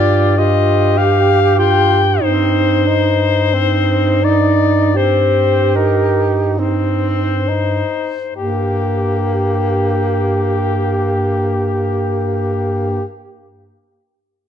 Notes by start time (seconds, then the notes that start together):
Already playing: G2 F4 G4 D5
0.38 F4 G4 D#5
0.97 G4 F5
1.58 F4 G5
2.21 G2 C4 D#4 C5
2.87 D#4
3.53 C4 D#4
4.23 D#4 D5
4.95 C4 G4 C5
5.75 D#4 A#4
6.58 C4 D#4 C5
7.48 D#4
8.35 G2 A#3 G4